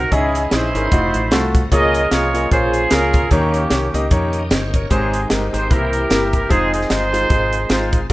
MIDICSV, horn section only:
0, 0, Header, 1, 2, 480
1, 0, Start_track
1, 0, Tempo, 399202
1, 139, Time_signature, 4, 2, 24, 8
1, 9772, End_track
2, 0, Start_track
2, 0, Title_t, "Horn section"
2, 0, Program_c, 0, 61
2, 0, Note_on_c, 0, 70, 80
2, 132, Note_off_c, 0, 70, 0
2, 145, Note_on_c, 0, 68, 85
2, 153, Note_on_c, 0, 63, 61
2, 154, Note_on_c, 0, 64, 68
2, 405, Note_off_c, 0, 68, 0
2, 420, Note_on_c, 0, 68, 79
2, 609, Note_off_c, 0, 68, 0
2, 623, Note_off_c, 0, 64, 0
2, 625, Note_off_c, 0, 63, 0
2, 635, Note_on_c, 0, 72, 96
2, 637, Note_on_c, 0, 64, 67
2, 639, Note_on_c, 0, 63, 61
2, 1816, Note_off_c, 0, 64, 0
2, 1817, Note_off_c, 0, 63, 0
2, 1863, Note_off_c, 0, 72, 0
2, 2073, Note_on_c, 0, 75, 93
2, 2077, Note_on_c, 0, 68, 76
2, 2078, Note_on_c, 0, 70, 76
2, 2514, Note_off_c, 0, 75, 0
2, 2542, Note_off_c, 0, 68, 0
2, 2549, Note_on_c, 0, 73, 86
2, 2552, Note_on_c, 0, 65, 66
2, 2557, Note_on_c, 0, 68, 71
2, 2983, Note_off_c, 0, 70, 0
2, 3024, Note_off_c, 0, 68, 0
2, 3026, Note_off_c, 0, 73, 0
2, 3027, Note_off_c, 0, 65, 0
2, 3029, Note_on_c, 0, 72, 96
2, 3039, Note_on_c, 0, 68, 73
2, 3042, Note_on_c, 0, 65, 64
2, 3472, Note_off_c, 0, 72, 0
2, 3498, Note_off_c, 0, 65, 0
2, 3509, Note_on_c, 0, 70, 82
2, 3512, Note_on_c, 0, 65, 61
2, 3943, Note_off_c, 0, 68, 0
2, 3954, Note_off_c, 0, 65, 0
2, 3985, Note_on_c, 0, 67, 74
2, 3986, Note_off_c, 0, 70, 0
2, 3990, Note_on_c, 0, 61, 59
2, 3991, Note_on_c, 0, 58, 58
2, 4899, Note_off_c, 0, 58, 0
2, 4899, Note_off_c, 0, 61, 0
2, 4944, Note_off_c, 0, 67, 0
2, 5907, Note_on_c, 0, 68, 83
2, 5911, Note_on_c, 0, 63, 55
2, 5914, Note_on_c, 0, 60, 56
2, 6352, Note_off_c, 0, 68, 0
2, 6666, Note_on_c, 0, 72, 84
2, 6819, Note_off_c, 0, 63, 0
2, 6820, Note_off_c, 0, 60, 0
2, 6854, Note_off_c, 0, 72, 0
2, 6871, Note_on_c, 0, 70, 86
2, 6879, Note_on_c, 0, 67, 67
2, 6883, Note_on_c, 0, 64, 62
2, 7612, Note_off_c, 0, 70, 0
2, 7626, Note_on_c, 0, 70, 79
2, 7782, Note_off_c, 0, 67, 0
2, 7784, Note_off_c, 0, 64, 0
2, 7813, Note_off_c, 0, 70, 0
2, 7827, Note_on_c, 0, 68, 88
2, 7833, Note_on_c, 0, 63, 58
2, 7835, Note_on_c, 0, 60, 69
2, 8086, Note_off_c, 0, 68, 0
2, 8101, Note_on_c, 0, 68, 73
2, 8290, Note_off_c, 0, 68, 0
2, 8301, Note_off_c, 0, 63, 0
2, 8313, Note_on_c, 0, 68, 61
2, 8313, Note_on_c, 0, 72, 95
2, 8316, Note_on_c, 0, 63, 68
2, 8739, Note_off_c, 0, 60, 0
2, 9491, Note_off_c, 0, 68, 0
2, 9493, Note_off_c, 0, 63, 0
2, 9539, Note_off_c, 0, 72, 0
2, 9772, End_track
0, 0, End_of_file